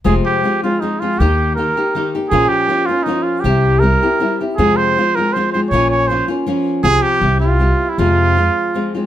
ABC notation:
X:1
M:3/4
L:1/16
Q:1/4=159
K:Fm
V:1 name="Trumpet"
A2 G4 F2 E2 F2 | G4 B6 z2 | A2 G4 F2 E2 F2 | G4 B6 z2 |
A2 c4 B2 c2 c2 | d2 d2 c2 z6 | A2 G4 F4- F =E | F8- F2 z2 |]
V:2 name="Nylon-string guitar"
[F,,C,F,A,CF]4 [F,A,CF]2 [F,A,CF]2 [F,A,CF]2 [F,A,CF]2 | [E,B,EG]4 [E,B,EG]2 [B,EG]2 [E,B,EG]2 [B,EG]2 | [B,,F,B,DF]4 [F,B,DF]2 [B,DF]2 [F,B,DF]4 | [C,G,C=EG]4 [G,CEG]2 [CEG]2 [G,CEG]2 [CEG]2 |
[F,,C,F,A,CF]4 [F,A,CF]2 [F,A,CF]2 [F,A,CF]2 [F,A,CF]2 | [B,,F,B,DF]4 [F,B,DF]2 [B,DF]2 [F,B,DF]4 | [C,F,CFG]4 [G,C=EG]2 [CEG]2 [G,CEG]4 | [F,,C,F,A,CF]4 [F,A,CF]4 [F,A,CF]2 [F,A,CF]2 |]
V:3 name="Upright bass" clef=bass
F,,,2 z8 z2 | E,,8 z4 | B,,,2 z8 z2 | C,,8 z4 |
F,,2 z8 z2 | B,,,8 z4 | C,,2 z2 C,,8 | F,,8 z4 |]